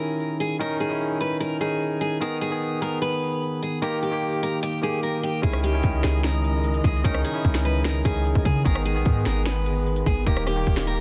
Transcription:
0.00 0.59 D#3 loud
0.00 0.60 C#4 medium
0.00 0.31 D#4 medium
0.00 0.91 E4 loud
0.00 0.36 A#4 medium
0.40 0.56 G#4 medium
0.59 0.86 D#3 loud
0.59 0.87 C#4 medium
0.59 0.87 D#4 loud
0.59 0.76 A#4 loud
0.80 1.18 G#4 medium
0.89 1.52 C#4 medium
0.89 1.52 D#4 medium
0.89 1.53 E4 medium
1.20 1.36 B4 medium
1.40 1.56 A#4 medium
1.60 2.13 D#3 medium
1.60 2.14 C#4 medium
1.60 2.14 D#4 medium
1.60 1.99 G#4 medium
2.01 2.17 G#4 medium
2.20 2.47 D#3 loud
2.20 2.48 B3 loud
2.20 2.48 G#4 loud
2.20 2.37 A#4 loud
2.41 2.79 G#4 medium
2.50 2.77 D#3 medium
2.50 2.78 B3 medium
2.50 2.78 G#4 medium
2.81 3.52 D#3 medium
2.81 3.52 B3 medium
2.81 3.53 G#4 medium
2.81 2.98 A#4 medium
3.02 3.58 B4 medium
3.62 3.78 G#4 medium
3.82 4.09 D#3 loud
3.82 4.09 A#3 loud
3.82 4.09 G4 loud
3.82 3.98 A#4 loud
4.02 4.40 G4 medium
4.11 4.74 D#3 medium
4.11 4.74 A#3 medium
4.11 4.75 G4 medium
4.43 4.59 A#4 medium
4.63 4.79 G4 medium
4.82 5.35 D#3 medium
4.82 5.36 A#3 medium
4.82 5.36 G4 medium
4.82 4.99 G#4 medium
5.03 5.19 A#4 medium
5.23 5.39 G4 medium
5.42 5.82 C#2 loud
5.42 8.62 C#3 medium
5.42 5.69 D#3 loud
5.42 8.62 G#3 medium
5.42 5.70 C#4 medium
5.42 5.70 E4 loud
5.42 5.59 G#4 loud
5.42 8.62 D#5 medium
5.42 kick loud
5.42 closed hi-hat loud
5.53 cross-stick loud
5.63 6.01 G4 medium
5.63 closed hi-hat medium
5.73 6.00 D#3 medium
5.73 6.00 C#4 medium
5.73 6.01 E4 medium
5.83 6.03 C#2 loud
5.83 kick loud
5.83 closed hi-hat medium
6.03 6.81 C#2 loud
6.03 6.74 D#3 medium
6.03 6.74 C#4 medium
6.03 6.75 D#4 medium
6.03 6.20 G#4 medium
6.03 finger snap medium
6.03 snare medium
6.03 closed hi-hat medium
6.23 6.81 A#4 medium
6.23 finger snap loud
6.23 snare loud
6.23 closed hi-hat medium
6.44 closed hi-hat medium
6.64 closed hi-hat soft
6.74 closed hi-hat medium
6.84 7.04 C#2 loud
6.84 7.00 G#4 medium
6.84 kick medium
6.84 closed hi-hat medium
7.04 7.24 C#2 loud
7.04 7.30 D#3 loud
7.04 7.31 C#4 loud
7.04 7.31 D#4 loud
7.04 7.20 A#4 loud
7.04 kick loud
7.04 closed hi-hat medium
7.14 cross-stick loud
7.24 7.62 G#4 medium
7.24 closed hi-hat medium
7.34 7.96 C#4 medium
7.34 7.96 D#4 medium
7.34 7.97 E4 medium
7.44 8.03 C#2 loud
7.44 kick loud
7.44 closed hi-hat medium
7.54 finger snap medium
7.54 snare loud
7.65 7.81 B4 medium
7.65 closed hi-hat medium
7.84 8.01 A#4 medium
7.84 finger snap medium
7.84 snare loud
7.84 closed hi-hat loud
8.04 8.34 C#2 loud
8.04 8.58 D#3 medium
8.04 8.58 C#4 medium
8.04 8.58 D#4 medium
8.04 8.43 G#4 medium
8.04 kick loud
8.04 closed hi-hat medium
8.25 closed hi-hat medium
8.35 8.45 C#2 loud
8.35 kick loud
8.45 8.65 C#3 loud
8.45 8.61 G#4 medium
8.45 kick medium
8.45 open hi-hat medium
8.64 8.97 G#1 loud
8.64 8.91 D#3 loud
8.64 10.25 D#3 medium
8.64 10.25 G#3 medium
8.64 8.92 B3 medium
8.64 10.25 B3 medium
8.64 8.92 G#4 loud
8.64 8.81 A#4 loud
8.64 kick loud
8.64 closed hi-hat medium
8.75 cross-stick loud
8.85 9.23 G#4 medium
8.85 closed hi-hat medium
8.94 9.05 A#1 loud
8.94 9.22 D#3 medium
8.94 9.22 B3 medium
8.94 9.22 G#4 medium
9.05 9.25 G#2 loud
9.05 kick loud
9.05 closed hi-hat medium
9.25 10.03 G#1 loud
9.25 9.96 D#3 medium
9.25 9.97 B3 medium
9.25 9.97 G#4 medium
9.25 9.42 A#4 medium
9.25 finger snap medium
9.25 snare medium
9.25 closed hi-hat medium
9.46 10.03 B4 medium
9.46 finger snap medium
9.46 snare loud
9.46 closed hi-hat medium
9.66 closed hi-hat medium
9.86 closed hi-hat soft
9.96 closed hi-hat medium
10.06 10.26 G#1 loud
10.06 10.23 G#4 medium
10.06 kick medium
10.06 closed hi-hat medium
10.26 10.65 D#1 loud
10.26 10.53 D#3 loud
10.26 11.01 D#3 medium
10.26 11.01 G3 medium
10.26 11.01 A#3 medium
10.26 10.53 A#3 loud
10.26 11.01 G4 medium
10.26 10.54 G4 loud
10.26 10.42 A#4 loud
10.26 kick loud
10.26 closed hi-hat loud
10.37 cross-stick loud
10.47 10.85 G4 medium
10.47 cross-stick medium
10.47 closed hi-hat medium
10.56 11.01 D#3 medium
10.56 11.01 A#3 medium
10.56 11.01 G4 medium
10.67 11.01 D#1 loud
10.67 kick loud
10.67 closed hi-hat medium
10.76 finger snap medium
10.76 snare loud
10.87 11.01 A#4 medium
10.87 closed hi-hat medium

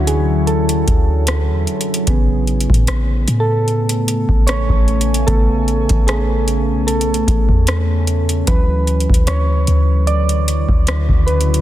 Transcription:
0.00 0.84 D2 loud
0.00 2.04 D3 medium
0.00 2.09 E3 medium
0.00 2.04 F#3 medium
0.00 2.09 F#3 soft
0.00 2.09 C#4 medium
0.00 2.10 D4 medium
0.00 2.04 E4 medium
0.00 2.09 E4 loud
0.00 2.09 F#4 medium
0.00 2.04 C#5 medium
0.07 0.49 G#4 medium
0.07 closed hi-hat medium
0.47 1.63 A4 medium
0.47 closed hi-hat soft
0.69 closed hi-hat medium
0.88 1.51 D2 loud
0.88 kick medium
0.88 closed hi-hat medium
1.27 cross-stick loud
1.27 closed hi-hat medium
1.49 1.67 E2 loud
1.67 closed hi-hat soft
1.81 closed hi-hat medium
1.94 closed hi-hat medium
2.07 2.67 A1 loud
2.07 8.44 C#3 medium
2.07 5.24 C#3 medium
2.07 8.44 A3 medium
2.07 5.24 B3 medium
2.07 5.24 G#4 medium
2.07 8.44 G#5 medium
2.07 kick loud
2.07 closed hi-hat medium
2.47 closed hi-hat soft
2.61 closed hi-hat medium
2.70 2.87 A2 loud
2.70 kick medium
2.74 closed hi-hat medium
2.87 3.26 A1 loud
2.87 cross-stick loud
2.87 closed hi-hat medium
3.28 4.25 A2 loud
3.28 closed hi-hat medium
3.40 4.50 A4 medium
3.68 closed hi-hat soft
3.89 closed hi-hat medium
4.08 closed hi-hat medium
4.29 4.67 A1 loud
4.29 kick medium
4.47 5.30 C#5 medium
4.47 cross-stick loud
4.47 closed hi-hat medium
4.69 5.25 A1 loud
4.69 kick medium
4.88 closed hi-hat soft
5.01 closed hi-hat medium
5.14 closed hi-hat medium
5.27 5.87 A1 loud
5.27 8.44 C#3 medium
5.27 8.44 A3 medium
5.27 8.44 B3 medium
5.27 8.45 C#4 medium
5.27 6.10 A4 loud
5.27 kick loud
5.27 closed hi-hat medium
5.68 closed hi-hat soft
5.89 6.71 A1 loud
5.89 kick loud
5.89 closed hi-hat medium
6.07 6.90 G#4 medium
6.07 cross-stick loud
6.07 closed hi-hat medium
6.48 closed hi-hat medium
6.69 7.25 B1 medium
6.87 8.03 A4 medium
6.87 closed hi-hat medium
7.01 closed hi-hat medium
7.14 closed hi-hat medium
7.28 7.49 A1 loud
7.28 kick medium
7.28 closed hi-hat medium
7.49 8.44 E2 loud
7.49 kick medium
7.67 cross-stick loud
7.67 closed hi-hat medium
8.07 closed hi-hat medium
8.29 closed hi-hat medium
8.47 9.07 D2 loud
8.47 11.61 C#3 medium
8.47 11.61 D3 medium
8.47 9.64 E3 medium
8.47 11.61 F#3 medium
8.47 9.64 F#3 medium
8.47 9.64 C#4 medium
8.47 11.61 E4 medium
8.47 9.30 B4 loud
8.47 kick loud
8.47 closed hi-hat medium
8.87 closed hi-hat soft
9.00 closed hi-hat soft
9.10 9.27 D2 medium
9.10 kick medium
9.14 closed hi-hat medium
9.27 9.66 D2 loud
9.27 10.10 C#5 medium
9.27 cross-stick loud
9.27 closed hi-hat medium
9.67 10.65 D2 loud
9.67 closed hi-hat medium
10.07 11.31 D5 loud
10.07 closed hi-hat soft
10.29 closed hi-hat medium
10.48 closed hi-hat medium
10.69 11.08 D2 loud
10.69 kick medium
10.87 cross-stick loud
10.87 closed hi-hat medium
11.09 11.61 D2 loud
11.09 kick medium
11.27 11.61 B4 medium
11.27 closed hi-hat soft
11.41 closed hi-hat medium
11.54 closed hi-hat medium

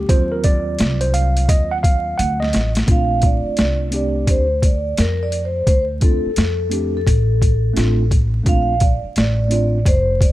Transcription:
0.08 0.75 D#2 loud
0.08 2.84 F#3 medium
0.08 2.84 C4 soft
0.08 2.84 F4 medium
0.08 0.32 C5 medium
0.08 kick medium
0.08 closed hi-hat medium
0.32 0.44 A#4 medium
0.44 1.03 D5 loud
0.44 kick medium
0.44 closed hi-hat medium
0.79 1.45 C2 medium
0.79 snare loud
0.79 closed hi-hat medium
1.01 1.13 C5 medium
1.01 closed hi-hat medium
1.14 1.50 F5 medium
1.14 closed hi-hat medium
1.37 closed hi-hat medium
1.49 2.15 D#2 medium
1.49 1.72 D#5 loud
1.49 kick medium
1.49 closed hi-hat loud
1.71 1.77 F#5 loud
1.83 2.19 F5 loud
1.83 kick medium
1.83 closed hi-hat medium
2.18 2.52 D2 loud
2.18 2.39 F#5 loud
2.18 closed hi-hat medium
2.40 2.73 D#5 medium
2.40 snare medium
2.53 2.87 A1 medium
2.53 snare medium
2.53 closed hi-hat medium
2.75 snare loud
2.75 closed hi-hat medium
2.86 3.42 A#1 medium
2.86 3.87 A3 medium
2.86 3.87 C4 medium
2.86 3.88 D4 medium
2.86 3.88 F4 medium
2.86 kick loud
2.86 closed hi-hat medium
2.91 3.26 F5 loud
3.22 kick medium
3.22 closed hi-hat medium
3.26 3.57 D5 medium
3.46 muted upright bass stroke soft
3.57 4.24 C2 medium
3.57 snare loud
3.57 closed hi-hat medium
3.61 3.76 D5 loud
3.91 4.44 A3 medium
3.91 4.45 C4 medium
3.91 4.45 D4 medium
3.91 4.46 G4 medium
3.91 closed hi-hat medium
3.96 4.30 D5 medium
4.27 4.94 D2 medium
4.27 4.65 C5 medium
4.27 kick medium
4.27 closed hi-hat medium
4.62 5.00 D5 medium
4.62 kick medium
4.62 closed hi-hat medium
4.97 5.64 F2 medium
4.97 5.22 A#4 medium
4.97 snare loud
4.97 closed hi-hat medium
5.23 5.43 D5 medium
5.32 closed hi-hat medium
5.45 5.67 C5 medium
5.67 6.21 D2 medium
5.67 5.84 C5 medium
5.67 kick medium
5.67 closed hi-hat medium
6.00 6.28 A3 medium
6.00 6.29 C4 medium
6.00 6.30 D4 medium
6.00 6.30 F4 medium
6.00 6.96 A4 medium
6.00 kick medium
6.00 closed hi-hat medium
6.25 muted upright bass stroke soft
6.36 7.03 F2 medium
6.36 snare loud
6.36 closed hi-hat medium
6.69 6.98 A3 medium
6.69 6.98 C4 medium
6.69 6.99 D4 medium
6.69 7.00 G4 medium
6.69 closed hi-hat medium
6.97 8.09 A4 medium
7.07 7.73 A1 loud
7.07 kick medium
7.07 closed hi-hat medium
7.42 kick medium
7.42 closed hi-hat medium
7.74 8.43 A1 medium
7.74 8.02 A3 medium
7.74 8.03 C4 medium
7.74 8.03 D4 medium
7.74 8.04 F4 medium
7.74 snare loud
7.74 closed hi-hat medium
8.11 kick medium
8.11 closed hi-hat medium
8.43 9.00 A#1 medium
8.43 8.72 A3 medium
8.43 8.73 C4 medium
8.43 8.73 D4 medium
8.43 kick medium
8.43 closed hi-hat medium
8.47 8.74 F4 medium
8.47 8.83 F5 loud
8.80 8.99 D5 medium
8.80 kick medium
8.80 closed hi-hat medium
9.04 muted upright bass stroke soft
9.16 9.82 A1 medium
9.16 9.53 D5 loud
9.16 snare loud
9.16 closed hi-hat medium
9.48 9.77 A3 medium
9.48 9.77 C4 medium
9.48 9.78 D4 medium
9.48 9.79 F4 medium
9.48 closed hi-hat medium
9.54 9.88 D5 medium
9.86 10.32 F1 loud
9.86 10.22 C5 medium
9.86 kick medium
9.86 closed hi-hat medium
10.21 10.32 D5 medium
10.21 kick medium
10.21 closed hi-hat medium

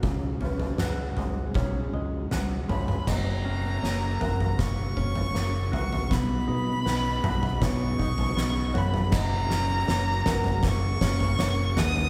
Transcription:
0.00 0.35 C#2 medium
0.00 3.03 C#3 medium
0.00 1.94 C#3 medium
0.00 0.42 C#4 medium
0.00 0.80 F#4 medium
0.00 kick medium
0.00 floor tom medium
0.06 3.04 F#3 medium
0.06 3.06 G#3 medium
0.06 3.04 F#4 medium
0.41 0.73 C#2 medium
0.41 1.55 C#4 medium
0.41 0.78 B4 medium
0.41 floor tom medium
0.60 floor tom medium
0.78 1.11 C#2 medium
0.78 2.30 F#4 medium
0.78 1.56 B4 medium
0.78 snare medium
0.78 mid tom medium
1.17 1.49 C#2 medium
1.17 1.93 G#3 medium
1.17 floor tom medium
1.54 1.87 B1 medium
1.54 3.07 C#4 medium
1.54 1.94 C#5 medium
1.54 kick medium
1.54 floor tom medium
1.93 2.25 C#2 medium
1.93 2.67 G#3 medium
1.93 2.69 D#5 medium
2.31 2.63 C#2 medium
2.31 3.07 F#4 medium
2.31 snare medium
2.31 floor tom medium
2.69 3.01 C#2 medium
2.69 3.07 G#3 medium
2.69 3.08 C#5 medium
2.69 3.09 B5 medium
2.69 floor tom medium
2.69 mid tom medium
2.88 mid tom medium
3.05 3.81 F#1 medium
3.05 12.10 C#3 medium
3.05 6.06 F#3 medium
3.05 6.57 F#3 medium
3.05 6.06 A#3 medium
3.05 6.06 F#4 medium
3.05 3.83 D#5 medium
3.05 4.61 A#5 medium
3.05 kick medium
3.05 snare soft
3.05 floor tom medium
3.05 crash loud
3.45 4.96 C#4 medium
3.83 4.19 F#1 medium
3.83 4.57 A#3 medium
3.83 4.21 C#5 medium
3.83 snare medium
4.20 4.58 F#1 medium
4.20 5.72 F#4 medium
4.20 4.97 A#4 medium
4.20 floor tom medium
4.20 mid tom medium
4.40 floor tom medium
4.58 4.95 F#1 medium
4.58 5.34 A#3 medium
4.58 5.73 C#6 medium
4.58 kick medium
4.58 snare medium
4.58 floor tom medium
4.97 5.33 F#1 medium
4.97 6.13 C#4 medium
4.97 5.33 C#5 medium
4.97 kick medium
5.15 floor tom medium
5.34 5.71 F#1 medium
5.34 6.10 A#3 medium
5.34 6.10 C#5 medium
5.34 snare medium
5.72 6.09 C#2 medium
5.72 7.23 F#4 medium
5.72 6.14 C#6 medium
5.72 floor tom medium
5.93 floor tom medium
6.10 6.47 B1 medium
6.10 12.10 F#3 medium
6.10 6.85 B3 medium
6.10 9.11 B3 medium
6.10 9.11 D#4 medium
6.10 7.65 B5 medium
6.10 kick medium
6.10 snare medium
6.10 floor tom medium
6.48 6.85 B2 medium
6.48 7.98 D#4 medium
6.48 6.84 B4 medium
6.86 7.23 B1 medium
6.86 7.60 B3 medium
6.86 7.62 B4 medium
6.86 snare medium
7.24 7.60 B1 medium
7.24 8.74 F#4 medium
7.24 floor tom medium
7.24 mid tom medium
7.43 floor tom medium
7.61 7.98 B1 medium
7.61 8.35 B3 medium
7.61 7.99 C#5 medium
7.61 8.79 C#6 medium
7.61 kick medium
7.61 snare medium
7.61 floor tom medium
7.99 8.36 B1 medium
7.99 9.13 D#4 medium
7.99 8.75 D#5 medium
7.99 kick medium
8.18 floor tom medium
8.36 8.74 B1 medium
8.36 9.13 B3 medium
8.36 snare medium
8.73 9.12 F#2 medium
8.73 10.25 F#4 medium
8.73 9.12 C#5 medium
8.73 floor tom medium
8.77 9.16 B5 medium
8.94 floor tom medium
9.12 9.86 F#1 medium
9.12 12.10 F#3 medium
9.12 12.10 A#3 medium
9.12 12.10 F#4 medium
9.12 9.88 D#5 medium
9.12 10.65 A#5 loud
9.12 kick loud
9.12 snare medium
9.12 floor tom medium
9.12 crash medium
9.50 11.01 C#4 medium
9.50 snare medium
9.87 10.25 F#1 medium
9.87 10.62 A#3 medium
9.87 10.26 C#5 medium
9.87 snare medium
10.26 10.62 F#1 medium
10.26 11.76 F#4 medium
10.26 11.01 A#4 medium
10.26 snare medium
10.26 floor tom medium
10.26 mid tom medium
10.44 floor tom medium
10.63 11.00 F#1 medium
10.63 11.38 A#3 medium
10.63 kick loud
10.63 snare medium
10.63 floor tom medium
10.67 11.80 C#6 loud
11.01 11.38 F#1 medium
11.01 12.10 C#4 medium
11.01 11.38 C#5 medium
11.01 kick medium
11.01 snare medium
11.20 floor tom medium
11.39 11.76 F#1 medium
11.39 12.10 A#3 medium
11.39 12.10 C#5 medium
11.39 snare medium
11.76 12.10 D#2 medium
11.76 12.10 F#4 medium
11.76 12.10 D#6 loud
11.76 snare medium
11.76 floor tom medium
11.96 floor tom medium

